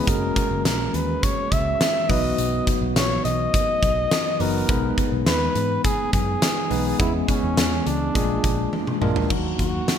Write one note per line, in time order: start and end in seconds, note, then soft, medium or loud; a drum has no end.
0.07 0.29 F#1 medium
0.07 1.11 G#3 medium
0.07 1.11 A#3 medium
0.07 1.12 C#4 medium
0.07 1.12 F#4 medium
0.07 1.12 G#4 medium
0.07 0.66 A#4 medium
0.07 kick loud
0.07 closed hi-hat medium
0.36 kick loud
0.36 closed hi-hat medium
0.51 0.62 F#1 loud
0.65 0.87 A#1 loud
0.65 0.96 A#4 medium
0.65 snare loud
0.65 closed hi-hat medium
0.65 tambourine medium
0.94 1.16 D#2 loud
0.94 1.25 B4 medium
0.94 closed hi-hat medium
1.23 1.53 C#5 loud
1.23 kick loud
1.23 closed hi-hat medium
1.52 1.73 C#2 loud
1.52 2.11 E5 loud
1.52 kick loud
1.52 closed hi-hat medium
1.81 snare loud
1.81 closed hi-hat loud
1.81 tambourine medium
2.09 2.31 B1 loud
2.09 3.13 F#3 medium
2.09 3.13 B3 medium
2.09 3.14 D#4 medium
2.09 3.14 F#4 medium
2.09 3.14 B4 medium
2.09 2.67 D#5 loud
2.09 kick loud
2.09 open hi-hat medium
2.38 2.60 B1 loud
2.38 closed hi-hat medium
2.67 kick medium
2.67 closed hi-hat medium
2.82 2.92 B1 loud
2.96 3.18 A#1 loud
2.96 3.23 C#5 loud
2.96 snare loud
2.96 closed hi-hat medium
2.96 tambourine medium
3.25 3.46 B1 medium
3.25 4.42 D#5 loud
3.25 closed hi-hat medium
3.54 kick loud
3.54 closed hi-hat medium
3.83 4.04 B1 medium
3.83 kick loud
3.83 closed hi-hat medium
4.11 snare loud
4.11 closed hi-hat loud
4.11 tambourine medium
4.40 4.62 F#1 loud
4.40 4.66 F#3 medium
4.40 4.66 B3 medium
4.40 4.66 D#4 medium
4.40 4.66 F#4 medium
4.40 4.98 A#4 medium
4.40 4.66 B4 medium
4.40 open hi-hat medium
4.68 4.91 B1 loud
4.68 5.73 G#3 medium
4.68 5.73 B3 medium
4.68 5.73 D#4 medium
4.68 5.73 G#4 medium
4.68 5.73 B4 medium
4.68 kick loud
4.68 closed hi-hat medium
4.98 kick medium
4.98 closed hi-hat medium
5.12 5.23 B1 medium
5.26 5.48 D#2 loud
5.26 5.81 B4 loud
5.26 snare loud
5.26 closed hi-hat medium
5.26 tambourine medium
5.55 5.77 G#2 loud
5.55 closed hi-hat medium
5.84 6.11 G#4 loud
5.84 kick loud
5.84 closed hi-hat medium
6.13 6.35 F#2 loud
6.13 6.96 G#4 loud
6.13 kick loud
6.13 closed hi-hat medium
6.42 snare loud
6.42 closed hi-hat loud
6.42 tambourine medium
6.70 6.93 B1 loud
6.70 6.97 G#3 medium
6.70 6.97 B3 medium
6.70 6.97 D#4 medium
6.70 6.97 G#4 medium
6.70 6.97 B4 medium
6.70 open hi-hat medium
6.99 7.21 E2 loud
6.99 8.03 G#3 medium
6.99 8.04 B3 medium
6.99 8.04 C#4 medium
6.99 8.04 E4 medium
6.99 7.13 E4 medium
6.99 8.04 G#4 medium
6.99 kick loud
6.99 closed hi-hat medium
7.28 7.88 C#4 loud
7.28 kick loud
7.28 closed hi-hat medium
7.43 7.54 E2 medium
7.57 7.79 E2 loud
7.57 snare loud
7.57 closed hi-hat medium
7.57 tambourine medium
7.86 8.08 C#2 medium
7.86 8.73 D4 medium
7.86 closed hi-hat medium
8.15 8.37 A#1 loud
8.15 8.93 G#3 medium
8.15 8.93 A#3 medium
8.15 8.93 D4 medium
8.15 8.93 F4 medium
8.15 8.94 G#4 medium
8.15 kick loud
8.15 closed hi-hat medium
8.44 8.66 A#1 medium
8.44 kick loud
8.44 closed hi-hat medium
8.73 high tom medium
8.87 mid tom medium
9.01 9.23 A#1 medium
9.01 9.27 G#3 loud
9.01 9.28 A#3 medium
9.01 9.28 D4 medium
9.01 9.28 F4 medium
9.01 9.28 A#4 loud
9.01 mid tom medium
9.16 floor tom loud
9.30 9.52 D#2 medium
9.30 9.98 F#3 medium
9.30 9.98 A#3 medium
9.30 9.98 F#4 medium
9.30 kick loud
9.30 crash medium
9.59 9.81 D#2 medium
9.59 9.98 F#4 medium
9.59 kick medium
9.59 closed hi-hat medium
9.88 snare loud
9.88 closed hi-hat medium